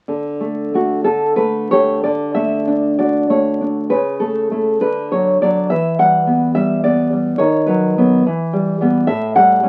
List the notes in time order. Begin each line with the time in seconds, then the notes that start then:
0.08 D3
0.40 A3
0.74 A3 F#4
1.04 D3 A4
1.36 A3 B4
1.71 A3 G4 C#5
2.04 D3 D5
2.35 A3 E5
2.67 D4
2.99 F#4 D5
3.30 A3 C#5
3.61 D4
3.90 C#3 B4
4.20 A3 A4
4.51 A3 E4
4.81 D3 B4
5.12 F#3 C#5
5.42 F#3 D4 D5
5.70 E3 E5
5.99 G3 F#5
6.27 B3
6.55 G3 E5
6.84 B3 D5
7.13 G3
7.38 D#3 C#5
7.66 F#3 B4
7.98 F#3 B3
8.27 E3
8.53 G3
8.81 G3 B3
9.07 A2 E5
9.36 G3 F#5
9.63 G3 C#4